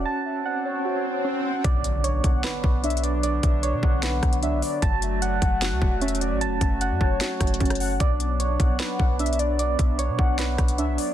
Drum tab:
HH |------------------------------------------------------------------------------------------------|x-----------x-----------x-----------x-----------x-----------------------x---x---x---x-----------|x-----------x-----------x-----------------------x-----------x-----x-----x-----------o-----------|x-----------x-----------x-----------x-----------x-----------------------x---x---x---x-----------|
SD |------------------------------------------------------------------------------------------------|------------------------------------------------o-----------------------------------------------|------------------------------------------------o-----------r-----------------------------------|------------------------------------------------o-----------------------------------------------|
BD |------------------------------------------------------------------------------------------------|o-----------------------------------o-----------------------o-----------------------------------|------------o-----------------------o-----------------------o-----------------------------------|o-----------------------------------o-----------------------o-----------------------------------|

HH |x-----------x-----------x-----------------------x-----------x---x---x---x--x--x--x--o-----------|x-----------x-----------x-----------x-----------x-----------------------x---x---x---x-----------|x-----------x-----------x-----------------------x-----------x-----x-----x-----------o-----------|
SD |------------------------------------------------o-----------r-----------------r-----------------|------------------------------------------------o-----------------------------------------------|------------------------------------------------o-----------r-----------------------------------|
BD |------------o-----------------------o-----------------------o-----------o-----------------------|o-----------------------------------o-----------------------o-----------------------------------|------------o-----------------------o-----------------------o-----------------------------------|